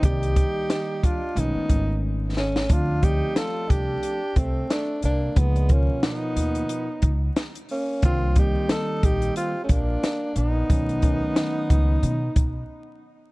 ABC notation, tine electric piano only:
X:1
M:4/4
L:1/8
Q:"Swing 16ths" 1/4=90
K:Dphr
V:1 name="Tine electric piano"
[E,G,B,Cd]3 z [^D,^G,A,^C] [D,G,A,C]3 | [F,A,CD] [F,A,Cd]3 z4 | [F,B,_CE] [_C,F,FB]3 z4 | [E,G,B,D] [E,G,B,C]3 z4 |
[^D,^F,A,^C] [D,F,A,C]3 z4 |]